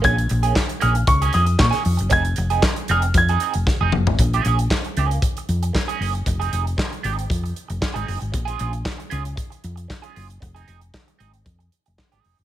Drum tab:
HH |xxxx-xxxxxxx-xox|xxxx-xxxxxxx----|xxxx-xxxxxxx-xox|xxxx-xxxxxxx-xox|
CP |----x-------x---|----x-----------|----x-------x---|----x-------x---|
SD |----o-------oo--|----o-------o---|----o-------o---|----o-------o---|
T2 |----------------|--------------o-|----------------|----------------|
FT |----------------|---------------o|----------------|----------------|
BD |o---o---o---o---|o---o---o---o---|o---o---o---o---|o---o---o---o---|

HH |xxxx-xxxxxxx-xox|xxxx-xxxxxxx-xox|
CP |----x-------x---|----x-------x---|
SD |----o-------o---|----o-------oo--|
T2 |----------------|----------------|
FT |----------------|----------------|
BD |o---o---o---o---|o---o---o---o---|